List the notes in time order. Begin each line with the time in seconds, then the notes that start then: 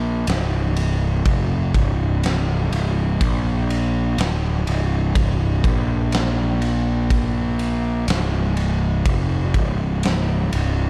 Already playing: A#1
0.27 C1, snare, ride
0.77 ride
1.25 F1, kick, ride
1.74 C1, kick, ride
2.23 snare, ride
2.72 C1, ride
3.21 A#1, kick, ride
3.70 ride
4.18 D1, snare, ride
4.67 C1, ride
5.15 C1, kick, ride
5.64 A#1, kick, ride
6.12 snare, ride
6.62 ride
7.10 kick, ride
7.59 ride
8.08 C1, snare, ride
8.57 ride
9.06 F1, kick, ride
9.54 C1, kick, ride
10.03 snare, ride
10.53 C1, ride